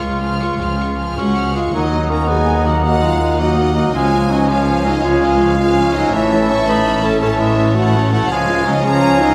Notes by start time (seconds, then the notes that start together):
Already playing: F4
0.02 C#2 G#3 F4 C#6
0.22 F3 G#4 F6
0.41 G#3 F4 C#6
0.59 C#2 F3 G#4 F6
0.78 G#3 F4 C#6
0.98 F3 G#4 F6
1.17 C#2 G#3 C#4 F4 F#4 F#5 C#6
1.36 F3 G#4 F6
1.55 G#3 F4 F5 C#6
1.73 D#2 D#3 F#3 A#3 D#4 D#5 F#5 A#5
1.92 F#3 D#4
2.10 D#3 A#3 C#4 A#4 A#5
2.28 F#3 B3 D#4 G#4 G#5
2.48 D#3 A#3
2.65 F#3 A#3 D#4 F#4 F#5
2.84 D#3 F#3 A#3 D#4 F#4 D#5 F#5
3.02 F#3 G#3 D#4 F4 F5
3.22 D#3 A#3
3.39 F#3 A#3 D#4 F#4 D#5 F#5
3.58 D#3 A#3
3.75 F#3 A#3 D#4 F#4 F#5
3.94 C#2 F3 G#3 C#4 F4 F5 G#5
4.13 G#3 F4
4.30 F3 F#3 C#4 D#4 D#5
4.48 F3 G#3 C#4 F4 C#5 F5 G#5
4.68 F3 C#4
4.85 F#3 G#3 D#4 F4 D#5
5.03 F3 G#3 C#4 F4 C#5 F5 G#5
5.23 G#3 F4 D#5
5.40 F3 C#4 F5
5.58 F3 G#3 C#4 F4 F5 G#5
5.77 F3 C#4
5.94 F#3 G#3 D#4 F4 D#5
6.12 A1 A2 E3 C#4 C#5 E5 A5
6.31 A3 E4
6.49 E3 C#4 E4 C#5 C#6
6.66 A3 D#4 E4 B4 B5
6.84 E3 C#4
7.02 A3 C#4 E4 A4 A5
7.21 E3 C#4 A4 C#5 A5
7.39 G#3 A3 E4 E5
7.58 E3 C#4
7.75 A3 E4 F#4 F#5
7.94 E3 C#4
8.11 A3 E4 F#4 F#5
8.29 C#2 C#3 F3 G#3 C#4 F4 F5 G#5
8.48 G#3 F4
8.65 F3 F#3 C#4 D#4 D#5
8.82 F3 G#3 C#4 F4 C#5 G#5 A#5
9.02 F3 C#4
9.19 F#3 G#3 D#4 F4 D#5